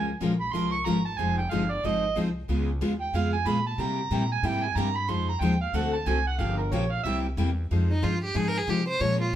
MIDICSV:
0, 0, Header, 1, 6, 480
1, 0, Start_track
1, 0, Key_signature, -4, "minor"
1, 0, Tempo, 325910
1, 1750, Time_signature, 4, 2, 24, 8
1, 13777, End_track
2, 0, Start_track
2, 0, Title_t, "Harmonica"
2, 0, Program_c, 0, 22
2, 0, Note_on_c, 0, 80, 100
2, 312, Note_off_c, 0, 80, 0
2, 578, Note_on_c, 0, 83, 106
2, 772, Note_on_c, 0, 84, 116
2, 794, Note_off_c, 0, 83, 0
2, 1044, Note_off_c, 0, 84, 0
2, 1053, Note_on_c, 0, 85, 118
2, 1255, Note_on_c, 0, 82, 100
2, 1277, Note_off_c, 0, 85, 0
2, 1542, Note_off_c, 0, 82, 0
2, 1551, Note_on_c, 0, 81, 117
2, 1741, Note_on_c, 0, 80, 103
2, 1763, Note_off_c, 0, 81, 0
2, 2021, Note_off_c, 0, 80, 0
2, 2030, Note_on_c, 0, 79, 90
2, 2221, Note_on_c, 0, 77, 85
2, 2243, Note_off_c, 0, 79, 0
2, 2523, Note_on_c, 0, 74, 101
2, 2545, Note_off_c, 0, 77, 0
2, 2727, Note_on_c, 0, 75, 100
2, 2749, Note_off_c, 0, 74, 0
2, 3198, Note_off_c, 0, 75, 0
2, 4435, Note_on_c, 0, 79, 94
2, 4649, Note_on_c, 0, 77, 93
2, 4671, Note_off_c, 0, 79, 0
2, 4893, Note_off_c, 0, 77, 0
2, 4901, Note_on_c, 0, 80, 92
2, 5110, Note_on_c, 0, 83, 103
2, 5132, Note_off_c, 0, 80, 0
2, 5390, Note_off_c, 0, 83, 0
2, 5399, Note_on_c, 0, 81, 105
2, 5601, Note_on_c, 0, 82, 96
2, 5624, Note_off_c, 0, 81, 0
2, 6354, Note_off_c, 0, 82, 0
2, 6362, Note_on_c, 0, 80, 103
2, 6558, Note_on_c, 0, 79, 104
2, 6580, Note_off_c, 0, 80, 0
2, 6831, Note_on_c, 0, 80, 105
2, 6853, Note_off_c, 0, 79, 0
2, 7020, Note_on_c, 0, 82, 102
2, 7042, Note_off_c, 0, 80, 0
2, 7312, Note_on_c, 0, 83, 107
2, 7334, Note_off_c, 0, 82, 0
2, 7502, Note_on_c, 0, 84, 107
2, 7524, Note_off_c, 0, 83, 0
2, 7781, Note_off_c, 0, 84, 0
2, 7790, Note_on_c, 0, 82, 91
2, 7960, Note_on_c, 0, 79, 97
2, 7982, Note_off_c, 0, 82, 0
2, 8259, Note_off_c, 0, 79, 0
2, 8267, Note_on_c, 0, 77, 96
2, 8466, Note_on_c, 0, 78, 105
2, 8488, Note_off_c, 0, 77, 0
2, 8728, Note_off_c, 0, 78, 0
2, 8737, Note_on_c, 0, 81, 112
2, 8952, Note_on_c, 0, 80, 98
2, 8974, Note_off_c, 0, 81, 0
2, 9227, Note_off_c, 0, 80, 0
2, 9236, Note_on_c, 0, 78, 97
2, 9425, Note_on_c, 0, 77, 92
2, 9447, Note_off_c, 0, 78, 0
2, 9680, Note_off_c, 0, 77, 0
2, 9689, Note_on_c, 0, 70, 72
2, 9901, Note_on_c, 0, 73, 82
2, 9923, Note_off_c, 0, 70, 0
2, 10191, Note_on_c, 0, 77, 120
2, 10214, Note_off_c, 0, 73, 0
2, 10356, Note_off_c, 0, 77, 0
2, 10365, Note_on_c, 0, 76, 115
2, 10544, Note_off_c, 0, 76, 0
2, 13777, End_track
3, 0, Start_track
3, 0, Title_t, "Violin"
3, 0, Program_c, 1, 40
3, 11649, Note_on_c, 1, 63, 85
3, 11841, Note_on_c, 1, 65, 84
3, 11863, Note_off_c, 1, 63, 0
3, 12123, Note_off_c, 1, 65, 0
3, 12136, Note_on_c, 1, 67, 83
3, 12313, Note_on_c, 1, 68, 84
3, 12335, Note_off_c, 1, 67, 0
3, 12489, Note_on_c, 1, 70, 103
3, 12511, Note_off_c, 1, 68, 0
3, 12631, Note_on_c, 1, 68, 88
3, 12653, Note_off_c, 1, 70, 0
3, 12809, Note_on_c, 1, 67, 80
3, 12831, Note_off_c, 1, 68, 0
3, 13072, Note_off_c, 1, 67, 0
3, 13081, Note_on_c, 1, 72, 93
3, 13274, Note_on_c, 1, 73, 98
3, 13297, Note_off_c, 1, 72, 0
3, 13557, Note_off_c, 1, 73, 0
3, 13566, Note_on_c, 1, 65, 71
3, 13777, Note_off_c, 1, 65, 0
3, 13777, End_track
4, 0, Start_track
4, 0, Title_t, "Steel-string acoustic guitar"
4, 0, Program_c, 2, 25
4, 1761, Note_on_c, 2, 60, 80
4, 1770, Note_on_c, 2, 68, 69
4, 2054, Note_off_c, 2, 60, 0
4, 2058, Note_off_c, 2, 68, 0
4, 2253, Note_on_c, 2, 60, 80
4, 2257, Note_on_c, 2, 68, 83
4, 2401, Note_off_c, 2, 60, 0
4, 2403, Note_off_c, 2, 68, 0
4, 2719, Note_on_c, 2, 60, 89
4, 2726, Note_on_c, 2, 68, 89
4, 3012, Note_off_c, 2, 60, 0
4, 3016, Note_off_c, 2, 68, 0
4, 3198, Note_on_c, 2, 60, 93
4, 3212, Note_on_c, 2, 68, 84
4, 3353, Note_off_c, 2, 60, 0
4, 3360, Note_off_c, 2, 68, 0
4, 7489, Note_on_c, 2, 60, 71
4, 7499, Note_on_c, 2, 68, 79
4, 7794, Note_off_c, 2, 60, 0
4, 7799, Note_off_c, 2, 68, 0
4, 7990, Note_on_c, 2, 60, 88
4, 7994, Note_on_c, 2, 68, 99
4, 8147, Note_off_c, 2, 60, 0
4, 8149, Note_off_c, 2, 68, 0
4, 11357, Note_on_c, 2, 68, 79
4, 11360, Note_on_c, 2, 60, 72
4, 11649, Note_off_c, 2, 68, 0
4, 11650, Note_off_c, 2, 60, 0
4, 11823, Note_on_c, 2, 60, 97
4, 11839, Note_on_c, 2, 68, 86
4, 11984, Note_off_c, 2, 60, 0
4, 11992, Note_off_c, 2, 68, 0
4, 12292, Note_on_c, 2, 60, 94
4, 12296, Note_on_c, 2, 68, 90
4, 12597, Note_off_c, 2, 60, 0
4, 12599, Note_off_c, 2, 68, 0
4, 12772, Note_on_c, 2, 60, 80
4, 12783, Note_on_c, 2, 68, 88
4, 12939, Note_off_c, 2, 60, 0
4, 12945, Note_off_c, 2, 68, 0
4, 13777, End_track
5, 0, Start_track
5, 0, Title_t, "Steel-string acoustic guitar"
5, 0, Program_c, 3, 25
5, 316, Note_on_c, 3, 53, 95
5, 316, Note_on_c, 3, 61, 101
5, 325, Note_on_c, 3, 56, 93
5, 329, Note_on_c, 3, 70, 97
5, 332, Note_on_c, 3, 65, 109
5, 473, Note_off_c, 3, 53, 0
5, 474, Note_off_c, 3, 61, 0
5, 478, Note_off_c, 3, 56, 0
5, 480, Note_off_c, 3, 70, 0
5, 481, Note_off_c, 3, 65, 0
5, 781, Note_on_c, 3, 53, 69
5, 782, Note_on_c, 3, 56, 66
5, 787, Note_on_c, 3, 65, 88
5, 788, Note_on_c, 3, 61, 74
5, 798, Note_on_c, 3, 70, 72
5, 1084, Note_off_c, 3, 53, 0
5, 1084, Note_off_c, 3, 56, 0
5, 1087, Note_off_c, 3, 65, 0
5, 1088, Note_off_c, 3, 61, 0
5, 1093, Note_off_c, 3, 70, 0
5, 1258, Note_on_c, 3, 53, 90
5, 1262, Note_on_c, 3, 56, 85
5, 1266, Note_on_c, 3, 61, 90
5, 1270, Note_on_c, 3, 65, 103
5, 1272, Note_on_c, 3, 70, 99
5, 1424, Note_off_c, 3, 53, 0
5, 1426, Note_off_c, 3, 56, 0
5, 1428, Note_off_c, 3, 61, 0
5, 1430, Note_off_c, 3, 65, 0
5, 1431, Note_off_c, 3, 70, 0
5, 1738, Note_on_c, 3, 63, 74
5, 1741, Note_on_c, 3, 53, 70
5, 1746, Note_on_c, 3, 56, 67
5, 1746, Note_on_c, 3, 65, 73
5, 1754, Note_on_c, 3, 72, 69
5, 2042, Note_off_c, 3, 63, 0
5, 2044, Note_off_c, 3, 53, 0
5, 2046, Note_off_c, 3, 56, 0
5, 2046, Note_off_c, 3, 65, 0
5, 2050, Note_off_c, 3, 72, 0
5, 2219, Note_on_c, 3, 53, 90
5, 2226, Note_on_c, 3, 56, 101
5, 2229, Note_on_c, 3, 72, 100
5, 2230, Note_on_c, 3, 65, 103
5, 2232, Note_on_c, 3, 63, 98
5, 2385, Note_off_c, 3, 53, 0
5, 2388, Note_off_c, 3, 56, 0
5, 2389, Note_off_c, 3, 72, 0
5, 2390, Note_off_c, 3, 65, 0
5, 2391, Note_off_c, 3, 63, 0
5, 2699, Note_on_c, 3, 53, 68
5, 2703, Note_on_c, 3, 63, 80
5, 2705, Note_on_c, 3, 56, 80
5, 2715, Note_on_c, 3, 65, 78
5, 2716, Note_on_c, 3, 72, 74
5, 3002, Note_off_c, 3, 53, 0
5, 3005, Note_off_c, 3, 56, 0
5, 3005, Note_off_c, 3, 63, 0
5, 3010, Note_off_c, 3, 65, 0
5, 3011, Note_off_c, 3, 72, 0
5, 3172, Note_on_c, 3, 56, 89
5, 3173, Note_on_c, 3, 53, 83
5, 3181, Note_on_c, 3, 65, 89
5, 3186, Note_on_c, 3, 63, 81
5, 3192, Note_on_c, 3, 72, 95
5, 3340, Note_off_c, 3, 56, 0
5, 3341, Note_off_c, 3, 53, 0
5, 3345, Note_off_c, 3, 65, 0
5, 3347, Note_off_c, 3, 63, 0
5, 3351, Note_off_c, 3, 72, 0
5, 3655, Note_on_c, 3, 49, 67
5, 3668, Note_on_c, 3, 56, 63
5, 3669, Note_on_c, 3, 59, 67
5, 3672, Note_on_c, 3, 68, 80
5, 3674, Note_on_c, 3, 65, 72
5, 3960, Note_off_c, 3, 49, 0
5, 3966, Note_off_c, 3, 56, 0
5, 3967, Note_off_c, 3, 59, 0
5, 3968, Note_off_c, 3, 68, 0
5, 3969, Note_off_c, 3, 65, 0
5, 4141, Note_on_c, 3, 49, 96
5, 4141, Note_on_c, 3, 56, 94
5, 4145, Note_on_c, 3, 59, 94
5, 4150, Note_on_c, 3, 65, 112
5, 4153, Note_on_c, 3, 68, 104
5, 4304, Note_off_c, 3, 49, 0
5, 4305, Note_off_c, 3, 56, 0
5, 4307, Note_off_c, 3, 59, 0
5, 4309, Note_off_c, 3, 65, 0
5, 4311, Note_off_c, 3, 68, 0
5, 4616, Note_on_c, 3, 49, 74
5, 4617, Note_on_c, 3, 56, 78
5, 4625, Note_on_c, 3, 59, 77
5, 4627, Note_on_c, 3, 65, 69
5, 4631, Note_on_c, 3, 68, 68
5, 4920, Note_off_c, 3, 49, 0
5, 4920, Note_off_c, 3, 56, 0
5, 4924, Note_off_c, 3, 59, 0
5, 4925, Note_off_c, 3, 65, 0
5, 4927, Note_off_c, 3, 68, 0
5, 5090, Note_on_c, 3, 49, 89
5, 5098, Note_on_c, 3, 59, 88
5, 5100, Note_on_c, 3, 65, 91
5, 5100, Note_on_c, 3, 68, 89
5, 5101, Note_on_c, 3, 56, 90
5, 5258, Note_off_c, 3, 49, 0
5, 5262, Note_off_c, 3, 59, 0
5, 5263, Note_off_c, 3, 68, 0
5, 5264, Note_off_c, 3, 56, 0
5, 5264, Note_off_c, 3, 65, 0
5, 5587, Note_on_c, 3, 55, 72
5, 5594, Note_on_c, 3, 48, 81
5, 5600, Note_on_c, 3, 58, 65
5, 5600, Note_on_c, 3, 64, 76
5, 5605, Note_on_c, 3, 67, 76
5, 5885, Note_off_c, 3, 55, 0
5, 5888, Note_off_c, 3, 48, 0
5, 5891, Note_off_c, 3, 58, 0
5, 5891, Note_off_c, 3, 64, 0
5, 5894, Note_off_c, 3, 67, 0
5, 6061, Note_on_c, 3, 48, 105
5, 6066, Note_on_c, 3, 55, 103
5, 6073, Note_on_c, 3, 64, 102
5, 6073, Note_on_c, 3, 67, 100
5, 6074, Note_on_c, 3, 58, 101
5, 6223, Note_off_c, 3, 48, 0
5, 6226, Note_off_c, 3, 55, 0
5, 6229, Note_off_c, 3, 67, 0
5, 6230, Note_off_c, 3, 58, 0
5, 6230, Note_off_c, 3, 64, 0
5, 6533, Note_on_c, 3, 48, 69
5, 6536, Note_on_c, 3, 55, 78
5, 6542, Note_on_c, 3, 64, 72
5, 6545, Note_on_c, 3, 58, 84
5, 6545, Note_on_c, 3, 67, 69
5, 6837, Note_off_c, 3, 48, 0
5, 6839, Note_off_c, 3, 55, 0
5, 6842, Note_off_c, 3, 64, 0
5, 6843, Note_off_c, 3, 58, 0
5, 6843, Note_off_c, 3, 67, 0
5, 7014, Note_on_c, 3, 48, 91
5, 7022, Note_on_c, 3, 55, 93
5, 7024, Note_on_c, 3, 58, 96
5, 7026, Note_on_c, 3, 64, 98
5, 7029, Note_on_c, 3, 67, 110
5, 7179, Note_off_c, 3, 48, 0
5, 7183, Note_off_c, 3, 55, 0
5, 7184, Note_off_c, 3, 58, 0
5, 7185, Note_off_c, 3, 64, 0
5, 7187, Note_off_c, 3, 67, 0
5, 7482, Note_on_c, 3, 53, 73
5, 7490, Note_on_c, 3, 56, 70
5, 7495, Note_on_c, 3, 72, 78
5, 7496, Note_on_c, 3, 63, 81
5, 7496, Note_on_c, 3, 65, 73
5, 7791, Note_off_c, 3, 53, 0
5, 7795, Note_off_c, 3, 56, 0
5, 7798, Note_off_c, 3, 63, 0
5, 7798, Note_off_c, 3, 65, 0
5, 7798, Note_off_c, 3, 72, 0
5, 7973, Note_on_c, 3, 53, 94
5, 7973, Note_on_c, 3, 56, 93
5, 7982, Note_on_c, 3, 63, 88
5, 7984, Note_on_c, 3, 72, 112
5, 7985, Note_on_c, 3, 65, 109
5, 8138, Note_off_c, 3, 53, 0
5, 8138, Note_off_c, 3, 56, 0
5, 8143, Note_off_c, 3, 63, 0
5, 8144, Note_off_c, 3, 65, 0
5, 8144, Note_off_c, 3, 72, 0
5, 8453, Note_on_c, 3, 60, 66
5, 8455, Note_on_c, 3, 50, 77
5, 8455, Note_on_c, 3, 57, 81
5, 8469, Note_on_c, 3, 66, 74
5, 8471, Note_on_c, 3, 69, 86
5, 8756, Note_off_c, 3, 60, 0
5, 8757, Note_off_c, 3, 50, 0
5, 8757, Note_off_c, 3, 57, 0
5, 8764, Note_off_c, 3, 66, 0
5, 8765, Note_off_c, 3, 69, 0
5, 8925, Note_on_c, 3, 50, 78
5, 8925, Note_on_c, 3, 60, 93
5, 8926, Note_on_c, 3, 57, 94
5, 8931, Note_on_c, 3, 66, 96
5, 8936, Note_on_c, 3, 69, 107
5, 9094, Note_off_c, 3, 50, 0
5, 9094, Note_off_c, 3, 60, 0
5, 9095, Note_off_c, 3, 57, 0
5, 9097, Note_off_c, 3, 66, 0
5, 9100, Note_off_c, 3, 69, 0
5, 9403, Note_on_c, 3, 49, 72
5, 9407, Note_on_c, 3, 58, 74
5, 9413, Note_on_c, 3, 65, 82
5, 9416, Note_on_c, 3, 67, 81
5, 9418, Note_on_c, 3, 53, 77
5, 9711, Note_off_c, 3, 49, 0
5, 9713, Note_off_c, 3, 58, 0
5, 9716, Note_off_c, 3, 65, 0
5, 9718, Note_off_c, 3, 53, 0
5, 9718, Note_off_c, 3, 67, 0
5, 9898, Note_on_c, 3, 49, 98
5, 9898, Note_on_c, 3, 53, 90
5, 9901, Note_on_c, 3, 58, 97
5, 9910, Note_on_c, 3, 65, 114
5, 9912, Note_on_c, 3, 67, 107
5, 10061, Note_off_c, 3, 49, 0
5, 10061, Note_off_c, 3, 53, 0
5, 10062, Note_off_c, 3, 58, 0
5, 10066, Note_off_c, 3, 65, 0
5, 10068, Note_off_c, 3, 67, 0
5, 10387, Note_on_c, 3, 48, 73
5, 10388, Note_on_c, 3, 64, 77
5, 10389, Note_on_c, 3, 55, 67
5, 10393, Note_on_c, 3, 58, 70
5, 10398, Note_on_c, 3, 67, 86
5, 10683, Note_off_c, 3, 48, 0
5, 10683, Note_off_c, 3, 64, 0
5, 10684, Note_off_c, 3, 55, 0
5, 10686, Note_off_c, 3, 58, 0
5, 10689, Note_off_c, 3, 67, 0
5, 10871, Note_on_c, 3, 58, 111
5, 10872, Note_on_c, 3, 48, 96
5, 10875, Note_on_c, 3, 55, 96
5, 10880, Note_on_c, 3, 64, 107
5, 10890, Note_on_c, 3, 67, 97
5, 11027, Note_off_c, 3, 58, 0
5, 11028, Note_off_c, 3, 48, 0
5, 11029, Note_off_c, 3, 55, 0
5, 11032, Note_off_c, 3, 64, 0
5, 11036, Note_off_c, 3, 67, 0
5, 11360, Note_on_c, 3, 53, 66
5, 11363, Note_on_c, 3, 56, 68
5, 11371, Note_on_c, 3, 65, 79
5, 11374, Note_on_c, 3, 72, 81
5, 11375, Note_on_c, 3, 63, 72
5, 11650, Note_off_c, 3, 53, 0
5, 11652, Note_off_c, 3, 56, 0
5, 11656, Note_off_c, 3, 65, 0
5, 11657, Note_off_c, 3, 72, 0
5, 11658, Note_off_c, 3, 63, 0
5, 11815, Note_on_c, 3, 53, 77
5, 11816, Note_on_c, 3, 56, 86
5, 11821, Note_on_c, 3, 65, 95
5, 11822, Note_on_c, 3, 63, 101
5, 11825, Note_on_c, 3, 72, 106
5, 11980, Note_off_c, 3, 53, 0
5, 11980, Note_off_c, 3, 56, 0
5, 11983, Note_off_c, 3, 63, 0
5, 11983, Note_off_c, 3, 65, 0
5, 11985, Note_off_c, 3, 72, 0
5, 12296, Note_on_c, 3, 53, 69
5, 12307, Note_on_c, 3, 56, 73
5, 12308, Note_on_c, 3, 63, 77
5, 12312, Note_on_c, 3, 65, 74
5, 12316, Note_on_c, 3, 72, 68
5, 12600, Note_off_c, 3, 53, 0
5, 12605, Note_off_c, 3, 56, 0
5, 12605, Note_off_c, 3, 63, 0
5, 12607, Note_off_c, 3, 65, 0
5, 12610, Note_off_c, 3, 72, 0
5, 12792, Note_on_c, 3, 53, 81
5, 12792, Note_on_c, 3, 56, 87
5, 12794, Note_on_c, 3, 63, 100
5, 12801, Note_on_c, 3, 65, 102
5, 12804, Note_on_c, 3, 72, 92
5, 12949, Note_off_c, 3, 53, 0
5, 12950, Note_off_c, 3, 56, 0
5, 12950, Note_off_c, 3, 63, 0
5, 12954, Note_off_c, 3, 65, 0
5, 12955, Note_off_c, 3, 72, 0
5, 13263, Note_on_c, 3, 56, 74
5, 13265, Note_on_c, 3, 61, 66
5, 13267, Note_on_c, 3, 53, 72
5, 13268, Note_on_c, 3, 65, 75
5, 13277, Note_on_c, 3, 70, 76
5, 13564, Note_off_c, 3, 56, 0
5, 13566, Note_off_c, 3, 53, 0
5, 13566, Note_off_c, 3, 61, 0
5, 13567, Note_off_c, 3, 65, 0
5, 13571, Note_off_c, 3, 70, 0
5, 13777, End_track
6, 0, Start_track
6, 0, Title_t, "Upright bass"
6, 0, Program_c, 4, 32
6, 0, Note_on_c, 4, 37, 94
6, 288, Note_off_c, 4, 37, 0
6, 302, Note_on_c, 4, 34, 98
6, 771, Note_off_c, 4, 34, 0
6, 787, Note_on_c, 4, 36, 86
6, 1254, Note_off_c, 4, 36, 0
6, 1288, Note_on_c, 4, 32, 96
6, 1745, Note_off_c, 4, 32, 0
6, 1756, Note_on_c, 4, 29, 93
6, 2218, Note_off_c, 4, 29, 0
6, 2241, Note_on_c, 4, 31, 96
6, 2701, Note_off_c, 4, 31, 0
6, 2714, Note_on_c, 4, 32, 80
6, 3177, Note_off_c, 4, 32, 0
6, 3188, Note_on_c, 4, 36, 96
6, 3654, Note_off_c, 4, 36, 0
6, 3666, Note_on_c, 4, 37, 96
6, 4132, Note_off_c, 4, 37, 0
6, 4140, Note_on_c, 4, 39, 103
6, 4609, Note_off_c, 4, 39, 0
6, 4616, Note_on_c, 4, 41, 89
6, 5080, Note_off_c, 4, 41, 0
6, 5089, Note_on_c, 4, 46, 109
6, 5563, Note_off_c, 4, 46, 0
6, 5569, Note_on_c, 4, 48, 99
6, 6043, Note_off_c, 4, 48, 0
6, 6054, Note_on_c, 4, 46, 95
6, 6514, Note_off_c, 4, 46, 0
6, 6523, Note_on_c, 4, 44, 99
6, 6999, Note_off_c, 4, 44, 0
6, 7006, Note_on_c, 4, 43, 106
6, 7480, Note_off_c, 4, 43, 0
6, 7494, Note_on_c, 4, 41, 104
6, 7954, Note_off_c, 4, 41, 0
6, 7963, Note_on_c, 4, 39, 98
6, 8434, Note_off_c, 4, 39, 0
6, 8443, Note_on_c, 4, 38, 98
6, 8918, Note_off_c, 4, 38, 0
6, 8929, Note_on_c, 4, 36, 103
6, 9397, Note_off_c, 4, 36, 0
6, 9406, Note_on_c, 4, 31, 109
6, 9879, Note_off_c, 4, 31, 0
6, 9892, Note_on_c, 4, 34, 113
6, 10362, Note_off_c, 4, 34, 0
6, 10377, Note_on_c, 4, 36, 98
6, 10846, Note_off_c, 4, 36, 0
6, 10858, Note_on_c, 4, 40, 110
6, 11326, Note_off_c, 4, 40, 0
6, 11357, Note_on_c, 4, 41, 102
6, 11817, Note_off_c, 4, 41, 0
6, 11837, Note_on_c, 4, 43, 99
6, 12297, Note_off_c, 4, 43, 0
6, 12304, Note_on_c, 4, 44, 90
6, 12767, Note_off_c, 4, 44, 0
6, 12775, Note_on_c, 4, 48, 96
6, 13247, Note_off_c, 4, 48, 0
6, 13266, Note_on_c, 4, 46, 103
6, 13734, Note_off_c, 4, 46, 0
6, 13777, End_track
0, 0, End_of_file